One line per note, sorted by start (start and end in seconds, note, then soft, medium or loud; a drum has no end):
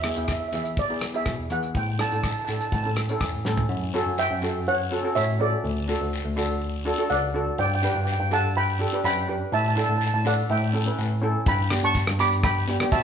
0.02 0.11 B3 medium
0.02 0.12 E4 medium
0.02 0.12 G#4 medium
0.02 0.08 E5 soft
0.02 cross-stick medium
0.02 closed hi-hat medium
0.10 0.17 E5 medium
0.16 0.36 E2 medium
0.16 0.38 B3 medium
0.16 0.39 E4 medium
0.16 0.39 G#4 medium
0.16 0.23 E5 soft
0.16 closed hi-hat medium
0.24 0.31 E5 soft
0.24 kick medium
0.24 cross-stick medium
0.24 closed hi-hat soft
0.24 short guiro medium
0.33 0.39 E5 soft
0.40 0.47 E5 soft
0.48 0.75 B3 medium
0.48 0.54 E5 medium
0.52 0.72 E3 medium
0.52 0.75 E4 medium
0.52 0.75 G#4 medium
0.52 0.63 E5 medium
0.52 closed hi-hat medium
0.52 short guiro medium
0.64 0.71 E5 medium
0.64 closed hi-hat medium
0.77 1.16 D5 medium
0.77 kick medium
0.77 closed hi-hat medium
0.77 long guiro medium
0.89 1.04 B3 medium
0.89 1.04 E4 medium
0.89 1.05 G#4 medium
1.01 cross-stick medium
1.01 closed hi-hat medium
1.01 short guiro medium
1.14 1.36 B3 medium
1.14 1.36 E4 medium
1.14 1.37 G#4 medium
1.14 1.52 E5 medium
1.14 closed hi-hat soft
1.25 1.36 B2 medium
1.25 kick medium
1.25 cross-stick medium
1.25 closed hi-hat soft
1.25 short guiro medium
1.39 1.48 E2 medium
1.50 1.69 E3 medium
1.50 1.75 B3 medium
1.50 1.75 E4 medium
1.50 1.75 G#4 medium
1.50 1.76 F#5 medium
1.50 closed hi-hat medium
1.63 closed hi-hat soft
1.75 2.03 A2 medium
1.75 1.99 G5 medium
1.75 kick medium
1.75 closed hi-hat soft
1.75 long guiro medium
1.99 2.07 D4 medium
1.99 2.07 E4 medium
1.99 2.07 A4 medium
1.99 2.07 A5 medium
1.99 cross-stick medium
1.99 closed hi-hat medium
2.08 2.31 A2 medium
2.08 2.34 D4 medium
2.08 2.34 E4 medium
2.08 2.15 A5 medium
2.08 closed hi-hat medium
2.13 2.35 A4 medium
2.13 2.22 A5 medium
2.23 2.30 A5 medium
2.23 kick medium
2.23 cross-stick medium
2.23 closed hi-hat soft
2.23 short guiro medium
2.31 2.37 A5 medium
2.39 2.44 A5 medium
2.45 2.58 A2 medium
2.45 2.70 D4 medium
2.45 2.70 E4 medium
2.45 2.52 A5 medium
2.45 closed hi-hat medium
2.45 short guiro medium
2.50 2.71 A4 medium
2.50 2.59 A5 soft
2.60 2.66 A5 medium
2.60 closed hi-hat medium
2.67 2.74 A5 medium
2.72 3.10 A2 medium
2.72 2.82 A5 medium
2.72 kick medium
2.72 closed hi-hat medium
2.72 long guiro medium
2.83 2.99 C#4 medium
2.83 3.00 E4 soft
2.83 3.00 A4 medium
2.83 2.89 A5 medium
2.96 cross-stick medium
2.96 closed hi-hat medium
2.96 short guiro medium
3.09 3.31 C#4 medium
3.09 3.32 E4 medium
3.09 3.32 A4 medium
3.09 closed hi-hat medium
3.20 3.31 E2 medium
3.20 kick medium
3.20 cross-stick medium
3.20 closed hi-hat medium
3.20 short guiro medium
3.34 3.43 A2 medium
3.45 3.64 A2 medium
3.45 3.70 C#4 medium
3.45 3.70 E4 medium
3.45 3.71 A4 medium
3.45 snare soft
3.57 floor tom medium
3.69 3.98 F#2 loud
3.69 long guiro medium
3.94 4.23 C#4 medium
3.94 4.24 F#4 medium
3.94 4.24 A4 loud
3.94 short guiro medium
4.06 4.25 F#2 medium
4.18 4.64 E5 medium
4.18 4.69 G5 loud
4.18 short guiro medium
4.31 4.96 F#2 medium
4.42 4.72 C#4 medium
4.42 4.72 F#4 medium
4.42 4.73 A4 medium
4.42 short guiro medium
4.67 5.13 C#5 medium
4.67 5.18 F#5 loud
4.67 long guiro medium
4.91 4.99 C#4 medium
4.91 4.99 F#4 medium
4.91 5.00 A4 medium
5.03 5.25 C#4 medium
5.03 5.26 F#4 medium
5.03 5.26 A4 medium
5.15 5.53 A2 medium
5.15 5.38 C#5 medium
5.15 5.40 E5 medium
5.15 short guiro medium
5.39 5.64 C#4 medium
5.39 5.64 F#4 medium
5.39 5.65 A4 medium
5.39 5.86 A4 medium
5.39 5.86 D5 medium
5.64 5.92 D2 loud
5.64 long guiro medium
5.88 6.18 D4 medium
5.88 6.18 F#4 medium
5.88 6.18 A4 medium
5.88 short guiro medium
6.01 6.20 D2 medium
6.13 short guiro medium
6.25 6.90 D2 medium
6.36 6.66 D4 medium
6.36 6.66 F#4 medium
6.36 6.67 A4 medium
6.36 short guiro medium
6.62 long guiro medium
6.85 6.93 D4 medium
6.85 6.93 F#4 medium
6.85 6.94 A4 loud
6.98 7.20 D4 medium
6.98 7.20 F#4 medium
6.98 7.20 A4 medium
7.10 7.48 C#2 loud
7.10 7.55 D5 medium
7.10 7.60 F#5 medium
7.10 short guiro medium
7.34 7.58 D4 medium
7.34 7.59 F#4 medium
7.34 7.59 A4 medium
7.58 7.87 G2 loud
7.58 7.66 D5 medium
7.58 7.65 G5 medium
7.58 long guiro medium
7.66 7.74 G5 medium
7.75 7.81 G5 medium
7.82 8.12 D4 medium
7.82 8.12 G4 medium
7.82 8.13 B4 medium
7.82 7.89 G5 medium
7.82 short guiro medium
7.90 7.96 G5 medium
7.95 8.14 G2 medium
7.95 8.04 G5 medium
8.05 8.11 G5 medium
8.05 short guiro medium
8.12 8.19 G5 medium
8.19 8.84 G2 medium
8.19 8.27 G5 medium
8.31 8.60 D4 medium
8.31 8.61 G4 medium
8.31 8.61 A4 medium
8.31 8.55 F#5 medium
8.31 8.57 A5 medium
8.31 short guiro medium
8.56 9.02 G5 medium
8.56 9.04 B5 loud
8.56 long guiro medium
8.79 8.87 D4 medium
8.79 8.87 G4 medium
8.79 8.88 A4 medium
8.93 9.14 D4 medium
8.93 9.14 G4 medium
8.93 9.15 B4 medium
9.04 9.41 F#2 loud
9.04 9.50 G5 medium
9.04 9.54 B5 loud
9.04 short guiro medium
9.28 9.52 D4 medium
9.28 9.53 G4 medium
9.28 9.53 B4 medium
9.52 9.81 A2 loud
9.52 9.60 E5 medium
9.52 9.59 A5 loud
9.52 long guiro medium
9.61 9.67 A5 medium
9.68 9.74 A5 medium
9.75 10.06 D4 medium
9.75 10.06 E4 medium
9.75 10.06 A4 medium
9.75 9.83 A5 medium
9.75 short guiro medium
9.84 9.89 A5 medium
9.89 10.08 A2 medium
9.89 9.97 A5 medium
9.98 10.05 A5 medium
9.98 short guiro medium
10.07 10.13 A5 medium
10.14 10.41 A2 medium
10.14 10.21 A5 medium
10.24 10.49 D4 medium
10.24 10.50 E4 medium
10.24 10.50 A4 medium
10.24 10.49 D5 medium
10.24 10.51 F#5 medium
10.24 short guiro medium
10.50 10.87 A2 loud
10.50 10.95 E5 medium
10.50 10.95 G5 medium
10.50 long guiro medium
10.73 10.81 C#4 medium
10.73 10.81 E4 medium
10.73 10.82 A4 medium
10.86 11.08 C#4 medium
10.86 11.08 E4 medium
10.86 11.09 B4 medium
10.99 11.36 A2 medium
10.99 short guiro medium
11.22 11.46 C#4 medium
11.22 11.47 E4 medium
11.22 11.47 A4 medium
11.46 11.75 G2 loud
11.46 11.81 G5 medium
11.46 11.85 B5 loud
11.46 kick loud
11.46 closed hi-hat medium
11.46 long guiro medium
11.70 12.00 B3 medium
11.70 12.00 D4 medium
11.70 12.00 G4 medium
11.70 cross-stick medium
11.70 closed hi-hat medium
11.70 short guiro medium
11.83 12.02 G2 medium
11.83 12.17 A5 medium
11.83 12.21 C#6 loud
11.83 closed hi-hat medium
11.95 kick medium
11.95 closed hi-hat medium
11.95 short guiro medium
12.07 12.73 G2 medium
12.07 cross-stick medium
12.19 12.48 B3 medium
12.19 12.49 D4 medium
12.19 12.49 G4 medium
12.19 12.42 B5 medium
12.19 12.45 D6 loud
12.19 closed hi-hat medium
12.19 short guiro medium
12.32 closed hi-hat medium
12.43 12.89 G5 medium
12.43 12.94 B5 loud
12.43 kick loud
12.43 cross-stick medium
12.43 closed hi-hat medium
12.43 long guiro medium
12.68 12.75 B3 medium
12.68 12.76 D4 medium
12.68 12.76 G4 medium
12.68 closed hi-hat loud
12.80 13.02 B3 medium
12.80 13.02 D4 medium
12.80 13.03 G4 medium
12.80 cross-stick medium
12.80 closed hi-hat medium
12.92 13.03 B2 loud
12.92 13.03 E5 medium
12.92 13.03 A5 medium
12.92 kick loud
12.92 closed hi-hat medium
12.92 short guiro medium